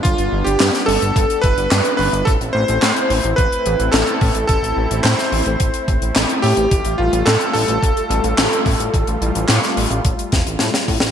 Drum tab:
HH |xx-xxxoxxxxxxxox|xx-xxxoxxxxxxxox|xx-xxxoxxxxxxxox|xx-xxxoxxxxxxxox|
CP |----x-------x---|----x-------x---|----x-------x---|----x-------x---|
SD |----oo------o---|----o-------o---|----oo------o---|----o-------o---|
BD |o-------o-o-----|o-------o-----o-|o-------o-o-----|o-------o-----o-|

HH |xxxxxxoxxxxxxxox|
CP |----x-----------|
SD |----oo----o-oo-o|
BD |o-------o-o---o-|